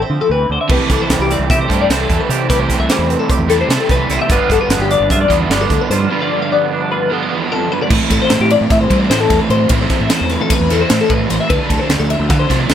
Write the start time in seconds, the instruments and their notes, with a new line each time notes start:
Already playing: clean electric guitar A3 C4 E4
0.02 clean electric guitar C5
0.10 fingered electric bass D3, clean electric guitar F3
0.21 clean electric guitar A4
0.30 fingered electric bass D2, clean electric guitar E3 B4
0.50 fingered electric bass D2, clean electric guitar D3 C5
0.61 clean electric guitar E5
0.68 fingered electric bass C2, overdriven electric guitar C3 E3 A3 E4 A4, clean electric guitar C3 G4 B4, kick, crash
0.89 fingered electric bass C2, clean electric guitar E3 A4, kick, snare, closed hi-hat
1.02 clean electric guitar C5
1.10 fingered electric bass C2, clean electric guitar G3, snare, closed hi-hat
1.19 fingered electric bass C2, clean electric guitar G4
1.31 clean electric guitar C4 D5, snare, closed hi-hat
1.39 fingered electric bass C2
1.50 fingered electric bass C3, clean electric guitar G4 E5, kick, snare, closed hi-hat
1.61 clean electric guitar C5
1.68 fingered electric bass G2, overdriven electric guitar C3 E3 A3 E4 A4, clean electric guitar G3, kick, closed hi-hat
1.81 clean electric guitar D5
1.89 fingered electric bass C2, overdriven electric guitar C3 E3 A3 E4 A4, clean electric guitar C4 C5, snare, closed hi-hat
2.01 clean electric guitar A4
2.10 fingered electric bass E2, clean electric guitar E3, kick, closed hi-hat
2.20 clean electric guitar B4
2.29 fingered electric bass C3, clean electric guitar C3 G4 C5, closed hi-hat
2.49 fingered electric bass C2, overdriven electric guitar C3 E3 A3 E4 A4, clean electric guitar C3 G4 B4, kick, closed hi-hat
2.59 clean electric guitar C5
2.70 clean electric guitar E3, kick, snare, closed hi-hat
2.79 fingered electric bass C2, clean electric guitar E5
2.90 clean electric guitar G3 C5, snare, closed hi-hat
2.99 fingered electric bass E2
3.10 clean electric guitar C4 B4, closed hi-hat
3.19 clean electric guitar A4
3.30 clean electric guitar G4 B4, kick, closed hi-hat
3.39 fingered electric bass E2
3.48 overdriven electric guitar C3 E3 A3 E4 A4, clean electric guitar G3 A4, snare, closed hi-hat
3.61 clean electric guitar C5
3.69 fingered electric bass C3, overdriven electric guitar C3 E3 A3 E4 A4, clean electric guitar C4, snare, closed hi-hat
3.80 clean electric guitar A4
3.89 fingered electric bass C2, clean electric guitar E3 B4, kick, snare, closed hi-hat
4.10 fingered electric bass C2, clean electric guitar C3 E4 C5, snare, closed hi-hat
4.19 clean electric guitar G4 E5
4.28 fingered electric bass G1, overdriven electric guitar G2 D3 F3 B3 D4 G4, clean electric guitar G2 D3 B3 D4 B4, kick, closed hi-hat
4.33 clean electric guitar F4
4.50 fingered electric bass G1, clean electric guitar D3 A4, kick, closed hi-hat
4.61 clean electric guitar B4
4.69 fingered electric bass G1, clean electric guitar B3, snare, closed hi-hat
4.79 fingered electric bass G1, clean electric guitar G4
4.91 clean electric guitar D4 D5, closed hi-hat
5.00 fingered electric bass G1
5.10 fingered electric bass G2, clean electric guitar F4 E5, kick, closed hi-hat
5.21 clean electric guitar D5
5.28 fingered electric bass E2, overdriven electric guitar D3 F3 B3 D4 G4, clean electric guitar B3, kick, closed hi-hat
5.32 overdriven electric guitar G2
5.41 clean electric guitar E5
5.49 fingered electric bass G1, overdriven electric guitar G2 D3 F3 B3 D4 G4, clean electric guitar D4 D5, snare, closed hi-hat
5.61 clean electric guitar A4
5.70 fingered electric bass D2, clean electric guitar D3, kick, closed hi-hat
5.81 clean electric guitar B4
5.90 fingered electric bass G2, clean electric guitar G2 F4 C5, snare, closed hi-hat
6.09 overdriven electric guitar G2 D3 F3 B3 D4 G4, clean electric guitar G2 F4 B4
6.22 clean electric guitar D5
6.32 clean electric guitar D3
6.42 clean electric guitar F5
6.52 clean electric guitar B3 D5
6.72 clean electric guitar D4 B4
6.82 clean electric guitar A4
6.92 clean electric guitar F4 B4
7.09 overdriven electric guitar G2 D3 F3 B3 D4 G4, clean electric guitar B3 A4
7.23 clean electric guitar B4
7.29 clean electric guitar E2, overdriven electric guitar G2 D3 F3 B3 D4 G4
7.42 clean electric guitar G4
7.52 clean electric guitar F2 A4
7.72 clean electric guitar G2 B4
7.82 clean electric guitar D5
7.89 overdriven electric guitar A2 E3 A3 C4 E4, fingered electric bass A2, clean electric guitar B4, kick, crash
8.10 fingered electric bass A2, clean electric guitar A4, kick, ride
8.22 clean electric guitar C5
8.30 fingered electric bass A2, snare, ride
8.40 fingered electric bass A2, clean electric guitar G4
8.50 clean electric guitar D5, ride
8.61 fingered electric bass A2
8.70 fingered electric bass A2, clean electric guitar E5, kick, snare, ride
8.81 clean electric guitar C5
8.90 overdriven electric guitar A2 E3 A3 C4 E4, fingered electric bass G3, kick, ride
9.00 clean electric guitar D5
9.10 overdriven electric guitar A2 E3 A3 C4 E4, fingered electric bass A2, clean electric guitar C5, snare, ride
9.20 clean electric guitar A4
9.30 fingered electric bass E2, kick, snare, ride
9.40 clean electric guitar B4
9.50 fingered electric bass A2, clean electric guitar C5, ride
9.69 fingered electric bass A2, overdriven electric guitar A2 E3 A3 C4, clean electric guitar B4, kick, ride
9.74 overdriven electric guitar E4
9.81 clean electric guitar C5
9.90 kick, snare, ride
10.00 fingered electric bass A2, clean electric guitar E5
10.10 clean electric guitar C5, snare, ride
10.21 fingered electric bass E2
10.29 clean electric guitar B4, snare, ride
10.41 clean electric guitar A4
10.50 clean electric guitar B4, kick, snare, ride
10.60 fingered electric bass E2
10.69 overdriven electric guitar A2 E3 A3 C4 E4, clean electric guitar A4, snare, ride
10.81 clean electric guitar C5
10.88 fingered electric bass A2, overdriven electric guitar A2 E3 A3 C4 E4, snare, ride
11.01 clean electric guitar A4
11.10 fingered electric bass A2, clean electric guitar B4, kick, ride
11.30 fingered electric bass A1, clean electric guitar C5, snare, ride
11.41 clean electric guitar E5
11.49 fingered electric bass D2, overdriven electric guitar D3 F3 A3 D4, clean electric guitar B4, kick, ride
11.70 fingered electric bass D2, clean electric guitar A4, kick, ride
11.80 clean electric guitar C5
11.89 fingered electric bass D2, snare, ride
12.00 fingered electric bass D2, clean electric guitar A4
12.10 clean electric guitar E5, ride
12.20 fingered electric bass D2
12.29 fingered electric bass D3, clean electric guitar F5, kick, snare, ride
12.39 clean electric guitar C5
12.49 fingered electric bass C3, overdriven electric guitar D3 F3 A3 D4, kick, snare, ride
12.60 clean electric guitar D5
12.68 fingered electric bass D2, overdriven electric guitar D3 F3, snare, ride